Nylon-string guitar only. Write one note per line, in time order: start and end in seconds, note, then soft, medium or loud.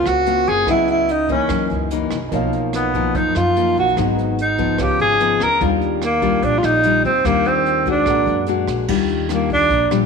0.00 0.66 C#3 soft
0.00 0.23 A#3 medium
0.00 0.24 C4 medium
0.00 0.24 F4 medium
0.27 0.65 A#3 medium
0.27 0.65 C4 medium
0.27 0.65 F4 medium
0.68 1.48 C#3 medium
0.68 1.09 F#3 soft
0.68 1.09 B3 soft
0.68 1.09 E4 medium
1.29 1.88 E3 medium
1.29 1.88 A#3 medium
1.29 1.88 D#4 medium
1.49 2.30 F#2 soft
1.91 2.18 E3 medium
1.91 2.18 A#3 medium
1.91 2.18 D#4 medium
2.32 3.12 B2 soft
2.32 2.91 F3 medium
2.32 2.91 A#3 medium
2.32 2.91 D#4 soft
2.95 3.53 F3 soft
2.95 3.53 A#3 medium
2.95 3.53 D#4 medium
3.15 3.95 F#2 soft
3.56 3.94 F3 medium
3.56 3.94 A#3 soft
3.56 3.94 D#4 medium
3.98 4.77 G#2 soft
3.98 4.38 F#3 soft
3.98 4.38 B3 medium
3.98 4.38 D#4 medium
4.58 5.17 F3 medium
4.58 5.17 B3 soft
4.58 5.17 D#4 medium
4.79 5.59 C#3 soft
5.21 5.47 F3 medium
5.21 5.46 B3 medium
5.21 5.47 D#4 medium
5.61 6.41 D#3 soft
5.61 6.02 G3 medium
5.61 6.02 D4 medium
5.61 6.02 F4 medium
6.22 6.80 G3 medium
6.22 6.81 D4 medium
6.22 6.81 F4 medium
6.43 7.23 A#2 medium
6.84 7.10 G3 medium
6.84 7.11 D4 soft
6.84 7.11 F4 medium
7.25 8.05 D#3 soft
7.25 7.83 G3 medium
7.25 7.83 D4 medium
7.25 7.83 F4 medium
7.87 8.45 G#3 medium
7.87 8.45 D4 medium
7.87 8.45 F#4 medium
8.08 8.87 A#2 soft
8.48 8.86 G#3 medium
8.48 8.86 D4 medium
8.48 8.86 F#4 medium
8.89 9.69 D#3 medium
8.89 9.26 G3 medium
8.89 9.27 D4 soft
8.89 9.27 F4 medium
9.30 9.71 G3 soft
9.30 9.71 D4 soft
9.30 9.71 F4 medium
9.70 10.06 A#2 soft
9.91 10.06 G3 medium
9.91 10.06 D4 medium
9.91 10.06 F4 medium